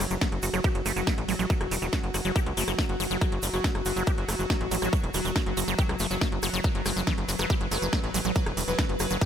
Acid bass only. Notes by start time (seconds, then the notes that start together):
0.11 F#3
0.21 F#3
0.43 F#4
0.54 F#3
0.64 G4
0.86 A3
0.96 F#3
1.07 F#3
1.29 F#3
1.39 F#3
1.50 F#3
1.71 G3
1.82 F#3
1.93 F#3
2.14 F#4
2.25 F#3
2.36 G4
2.57 A3
2.68 F#3
2.79 F#3
3.00 F#3
3.11 F#3
3.21 F#3
3.43 G3
3.54 F#3
3.64 F#3
3.86 F#4
3.96 F#3
4.07 G4
4.29 A3
4.39 F#3
4.50 F#3
4.71 F#3
4.82 F#3
4.93 F#3
5.14 G3
5.25 F#3
5.36 F#3
5.57 F#4
5.68 F#3
5.79 G4
6.00 A3
6.11 F#3
6.21 F#3
6.43 F#3
6.54 F#3
6.64 F#3
6.86 G3
6.96 F#3
7.07 E3
7.29 F#4
7.39 F#3
7.50 G4
7.71 A3
7.82 F#3
7.93 F#3
8.14 F#3
8.25 F#3
8.36 F#3
8.57 G3
8.68 F#3
8.79 E3
9.00 F#4
9.11 F#3
9.21 G4